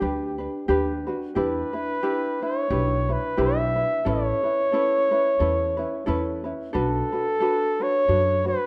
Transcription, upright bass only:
0.02 0.45 D2 medium
0.69 1.12 D#2 medium
1.36 1.61 E2 medium
2.70 3.14 B1 medium
3.38 3.82 B1 medium
4.06 4.31 A1 medium
5.40 5.84 E2 medium
6.08 6.51 E2 medium
6.75 6.99 B1 medium
8.08 8.52 F#2 medium

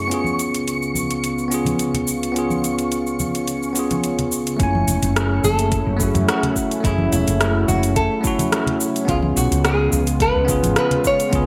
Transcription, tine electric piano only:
0.00 0.13 F#2 medium
0.00 0.13 A3 medium
0.00 0.10 C#4 medium
0.00 0.12 E4 medium
0.00 0.12 G#4 medium
0.08 1.46 B3 medium
0.08 1.47 C#4 medium
0.12 1.48 F4 medium
0.12 1.49 G#4 medium
1.48 2.30 B3 medium
1.48 2.32 C#4 medium
1.52 2.33 F4 medium
1.52 2.34 G#4 medium
2.32 3.71 B3 medium
2.32 3.72 C#4 medium
2.36 3.73 F4 medium
2.36 3.74 G#4 medium
3.73 4.55 B3 medium
3.73 4.56 C#4 medium
3.77 4.57 F4 medium
3.77 4.58 G#4 loud
4.57 5.95 A3 medium
4.57 5.96 C#4 medium
4.61 5.97 E4 medium
4.61 5.98 G#5 loud
5.97 6.79 A3 loud
5.97 6.80 C#4 medium
6.01 6.81 E4 medium
6.01 6.82 F#4 loud
6.81 8.19 A3 medium
6.81 8.20 C#4 medium
6.85 8.21 E4 medium
6.85 8.22 G#4 loud
8.21 9.03 A3 loud
8.21 9.04 C#4 medium
8.25 9.06 E4 medium
8.25 9.07 F#4 loud
9.05 10.44 B3 medium
9.05 10.45 C#4 medium
9.09 10.46 F4 medium
9.09 10.47 G#4 loud
10.45 11.28 B3 loud
10.45 11.29 C#4 medium
10.49 11.30 F4 medium
10.49 11.31 G#4 loud
11.29 11.46 B3 medium
11.29 11.46 C#4 medium
11.33 11.46 F4 medium
11.33 11.46 G#4 loud

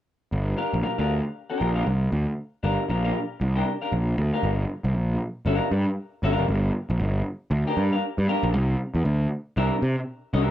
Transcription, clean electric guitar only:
0.57 0.76 D4 medium
0.57 0.76 G4 medium
0.57 0.76 A#4 medium
0.57 0.76 F5 medium
0.83 0.99 D4 medium
0.83 0.98 G4 medium
0.83 0.97 A#4 medium
0.83 0.97 F5 medium
0.98 1.14 D4 medium
0.98 1.14 G4 medium
0.98 1.14 A#4 medium
0.98 1.14 F5 medium
1.50 1.70 D4 medium
1.50 1.70 G4 medium
1.50 1.69 A#4 medium
1.50 1.69 G5 medium
1.75 1.87 D4 medium
1.75 1.87 G4 medium
1.75 1.87 A#4 medium
1.75 1.86 F5 medium
2.63 2.82 D4 medium
2.63 2.82 G4 medium
2.63 2.83 A#4 medium
2.63 2.83 F5 medium
2.89 3.04 D4 soft
2.89 3.04 G4 medium
2.89 3.04 A#4 medium
2.89 3.03 F5 soft
3.05 3.20 D4 medium
3.05 3.20 G4 medium
3.05 3.20 A#4 medium
3.05 3.20 F5 medium
3.56 3.72 D4 medium
3.56 3.71 G4 medium
3.56 3.71 A#4 medium
3.56 3.71 G5 medium
3.82 3.93 D4 medium
3.82 3.93 G4 medium
3.82 3.93 A#4 medium
3.82 3.93 F5 medium
4.34 4.49 D4 medium
4.34 4.49 G4 medium
4.34 4.49 A#4 medium
4.34 4.49 F5 medium
5.46 5.67 D4 medium
5.46 5.68 G4 medium
5.46 5.68 A#4 medium
5.46 5.68 F5 medium
6.23 6.45 D4 medium
6.23 6.45 G4 medium
6.23 6.45 A#4 medium
6.23 6.45 F5 loud
7.67 7.83 D4 medium
7.67 7.82 G4 medium
7.67 7.82 A#4 medium
7.67 7.82 G5 medium
7.93 8.04 D4 medium
7.93 8.04 G4 medium
7.93 8.03 A#4 medium
7.93 8.03 F5 medium
8.28 8.47 D4 medium
8.28 8.47 G4 medium
8.28 8.47 A#4 medium
8.28 8.47 F5 medium
9.57 9.75 D4 medium
9.57 9.75 G4 medium
9.57 9.76 A#4 medium
9.57 9.76 E5 medium
10.33 10.51 D4 medium
10.33 10.51 G4 medium
10.33 10.51 A#4 medium
10.33 10.51 E5 medium

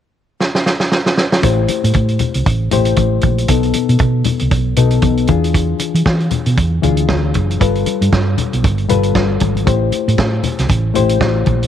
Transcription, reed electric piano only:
1.42 2.34 A3 medium
1.42 2.35 E4 medium
1.42 2.35 G4 medium
1.42 2.35 C5 medium
2.71 3.40 A3 medium
2.71 3.40 E4 medium
2.71 3.41 G4 medium
2.71 3.41 C5 medium
3.48 4.40 B2 medium
3.48 4.41 B3 medium
3.48 4.41 D#4 medium
3.48 4.41 A4 medium
4.77 5.29 B2 medium
4.77 5.29 B3 medium
4.77 5.29 D#4 medium
4.77 5.30 A4 medium
5.28 6.20 E3 medium
5.28 6.20 D4 medium
5.28 6.21 F4 medium
5.28 6.21 G#4 medium
6.83 7.52 E3 medium
6.83 7.52 D4 medium
6.83 7.52 F4 medium
6.83 7.53 G#4 medium
7.60 8.52 G3 medium
7.60 8.52 F4 medium
7.60 8.52 A4 medium
7.60 8.53 B4 medium
8.89 9.58 G3 medium
8.89 9.58 F4 medium
8.89 9.58 A4 medium
8.89 9.58 B4 medium
9.66 10.58 A3 medium
9.66 10.58 E4 medium
9.66 10.58 G4 medium
9.66 10.58 C5 medium
10.94 11.63 A3 medium
10.94 11.64 E4 medium
10.94 11.64 G4 medium
10.94 11.64 C5 loud

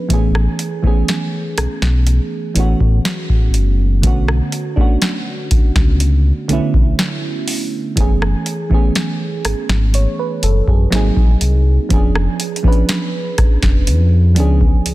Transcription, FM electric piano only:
0.00 0.12 F3 medium
0.00 0.11 B3 medium
0.00 0.12 C#4 medium
0.00 0.12 D4 medium
0.00 0.12 B4 loud
0.09 0.68 E3 medium
0.09 0.68 A3 medium
0.09 0.69 B3 medium
0.09 0.70 C#4 medium
0.13 0.70 G#4 medium
0.82 2.19 E3 medium
0.82 2.20 A3 medium
0.82 2.21 B3 medium
0.82 2.21 C#4 medium
0.87 2.22 G#4 medium
2.55 3.72 E3 medium
2.55 3.73 A3 medium
2.55 3.73 B3 medium
2.55 3.74 C#4 medium
2.59 3.74 F#4 loud
4.02 4.61 D3 medium
4.02 4.62 A3 medium
4.02 4.62 B3 medium
4.02 4.63 C#4 medium
4.07 4.64 F#4 loud
4.76 6.13 A3 medium
4.76 6.14 B3 medium
4.76 6.15 C#4 medium
4.76 6.13 D4 medium
4.81 6.15 F#4 loud
6.48 7.66 D3 medium
6.48 7.66 A3 medium
6.48 7.67 B3 medium
6.48 7.67 C#4 medium
6.53 7.68 E4 loud
7.96 8.55 E3 medium
7.96 8.55 A3 medium
7.96 8.56 B3 medium
7.96 8.57 C#4 medium
8.01 8.57 G#4 loud
8.70 10.06 E3 medium
8.70 10.07 A3 medium
8.70 10.08 B3 medium
8.70 10.08 C#4 medium
8.74 9.95 G#4 loud
9.95 10.18 C#5 medium
10.19 10.42 B4 medium
10.44 10.67 A4 medium
10.69 10.94 G#4 medium
10.90 11.70 F#3 loud
10.90 11.71 A#3 medium
10.90 11.71 C4 medium
10.90 11.72 D#4 medium
10.95 11.72 G#4 loud
11.89 12.48 F3 medium
11.89 12.49 B3 medium
11.89 12.49 C#4 medium
11.89 12.50 D4 medium
11.94 12.50 G#4 loud
12.63 14.00 F3 medium
12.63 14.00 B3 medium
12.63 14.01 C#4 medium
12.63 14.02 D4 medium
12.68 14.02 B4 medium
14.35 14.94 F3 medium
14.35 14.94 B3 medium
14.35 14.94 C#4 medium
14.35 14.94 D4 medium
14.40 14.94 G#4 medium

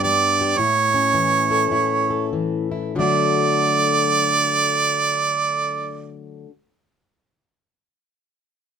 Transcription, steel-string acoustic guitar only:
0.00 0.56 G2 medium
0.00 0.57 B3 medium
0.00 0.57 D4 medium
0.00 0.40 G4 medium
0.05 0.56 G3 medium
0.41 0.58 G4 medium
0.58 1.70 A2 medium
0.58 1.70 E4 medium
0.94 2.95 C#4 medium
1.14 2.32 E3 medium
1.51 2.09 A4 medium
1.71 2.94 A2 medium
1.71 2.70 E4 medium
2.10 2.95 A4 medium
2.33 2.95 E3 medium
2.71 2.94 E4 medium
2.95 6.45 D3 medium
2.95 6.46 F#3 medium
2.95 6.49 A3 medium
3.01 6.51 D4 medium
3.01 6.52 F#4 medium

